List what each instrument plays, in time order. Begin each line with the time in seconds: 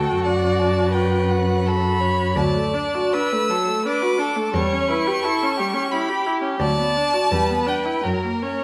Already playing: cello D2, viola F#4, violin A4 G5
0.24 cello F#2, violin D5 F#5
0.59 violin A5
0.91 violin B4 G5
1.31 violin F#5
1.66 violin A4 B5
2.01 violin C#5
2.35 cello D2, viola F#3, violin D5 A5
2.55 viola A3
2.74 viola D4
2.95 viola F#4
3.13 viola D4, violin B4 E6
3.32 viola A3
3.49 viola F#3, violin A4
3.68 viola A3
3.85 viola D4, violin B4 D6
4.02 viola F#4
4.18 viola D4, violin A4
4.36 viola A3
4.53 cello E2, viola G3, violin C#5 C#6
4.72 viola C#4
4.88 viola E4, violin B4
5.08 viola G4
5.22 viola E4, violin A4
5.43 viola C#4
5.57 viola G3, violin G4
5.74 viola C#4
5.91 viola E4, violin G4 B5
6.09 viola G4
6.27 viola E4
6.42 viola C#4
6.60 cello D2, viola F#3, violin D5 A5
6.79 viola B3
6.97 viola D4
7.13 viola F#4
7.32 cello E2, viola G3, violin B4
7.51 viola B3
7.67 viola D4, violin G5
7.85 viola E4
8.03 cello F#2, viola F#3, violin A#4
8.24 viola A#3
8.42 viola C#4, violin C#5